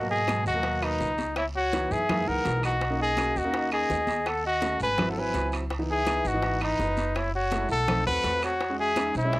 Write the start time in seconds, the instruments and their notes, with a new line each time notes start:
Already playing: upright bass G#2
0.00 grand piano B2 F#3 A#3
0.09 trumpet G#4, flute D#5, high conga
0.27 grand piano B2 F#3 G#3, high bongo, high conga, high timbale, short guiro, claves
0.46 upright bass D#2, trumpet F#4, flute D#5, high bongo, high conga, short guiro
0.54 grand piano B2 F#3 A#3
0.63 high bongo, high conga, high timbale, long guiro
0.81 trumpet D#4, flute B4, high bongo, high conga, high timbale, claves
1.00 upright bass C#2, high bongo, low bongo, high conga, short guiro
1.18 high conga, high timbale, short guiro
1.36 trumpet E4, flute C#5, high bongo, high conga, high timbale, long guiro, claves
1.55 trumpet F#4, flute C#5, high conga
1.73 grand piano E3 B3 D#4, high bongo, high conga, high timbale, short guiro
1.91 upright bass F#2, trumpet G#4, flute E5, high bongo, short guiro
2.09 grand piano E3 G#3 A#3 D#4, high bongo, high conga, low conga, high timbale, long guiro, claves
2.27 upright bass C#2, grand piano E3 G#3 A#3 D#4, trumpet A#4, flute F#5, high bongo, high conga
2.45 upright bass B1, high bongo, low bongo, high conga, high timbale, low timbale, short guiro
2.62 trumpet F#4, flute D#5, high conga, high timbale, short guiro, claves
2.81 high bongo, high conga, high timbale, long guiro
2.90 grand piano A#3 C#4 D#4
2.99 trumpet G#4, flute D#5, high conga
3.17 grand piano A#3 C#4 F#4, high bongo, high conga, high timbale, short guiro, claves
3.35 upright bass D#2, trumpet F#4, flute D#5, high bongo, high conga, short guiro
3.44 grand piano A#3 C#4 D#4
3.53 high bongo, high conga, high timbale, long guiro
3.71 trumpet G#4, flute D#5, high bongo, high conga, high timbale, claves
3.90 upright bass D#2, high bongo, low bongo, high conga, low timbale, short guiro
4.07 high conga, high timbale, short guiro
4.26 trumpet A4, flute F#5, high bongo, high conga, high timbale, long guiro, claves
4.44 trumpet F#4, flute D#5, high conga
4.62 grand piano A3 C#4 F#4, high bongo, high conga, high timbale, short guiro
4.80 upright bass G#1, trumpet B4, flute G#5, high bongo, short guiro
4.98 grand piano F#3 C4 E4, high bongo, high conga, low conga, high timbale, long guiro, claves
5.09 trumpet A4, flute F#5
5.17 grand piano F#3 C4 E4, trumpet B4, flute G#5, high bongo, high conga
5.34 upright bass C#2, high bongo, low bongo, high conga, high timbale, low timbale, short guiro
5.52 high conga, high timbale, short guiro, claves
5.70 high bongo, high conga, high timbale, long guiro
5.79 grand piano E3 B3 D#4
5.89 trumpet G#4, flute E5, high conga
6.07 grand piano E3 B3 D#4, high bongo, high conga, high timbale, short guiro, claves
6.25 upright bass G#1, trumpet F#4, flute D#5, high bongo, high conga, short guiro
6.34 grand piano E3 B3 D#4
6.42 high bongo, high conga, high timbale, long guiro
6.61 trumpet D#4, flute B4, high bongo, high conga, high timbale, claves
6.79 upright bass F#1, high bongo, low bongo, high conga, low timbale, short guiro
6.97 high conga, high timbale, short guiro
7.15 trumpet E4, flute C#5, high bongo, high conga, high timbale, long guiro, claves
7.34 trumpet F#4, flute C#5, high conga
7.51 grand piano G#3 A3 E4, high bongo, high conga, high timbale, short guiro
7.69 upright bass B1, trumpet A4, flute F#5, high bongo, short guiro
7.87 grand piano A3 C4 D#4, high bongo, high conga, low conga, high timbale, long guiro, claves
8.06 upright bass D#2, grand piano A3 C4 F#4, trumpet B4, flute F#5, high bongo, high conga
8.24 upright bass E2, high bongo, low bongo, high conga, high timbale, low timbale, short guiro
8.42 trumpet F#4, flute C#5, high conga, high timbale, short guiro, claves
8.61 high bongo, high conga, high timbale, long guiro
8.70 grand piano G#3 C#4 F#4
8.78 trumpet G#4, flute E5, high conga
8.96 grand piano G#3 C#4 D#4, high bongo, high conga, high timbale, short guiro, claves
9.14 upright bass B1, trumpet E4, flute C#5, high bongo, high conga, short guiro
9.24 grand piano G#3 C#4 D#5
9.33 high bongo, high conga, high timbale, long guiro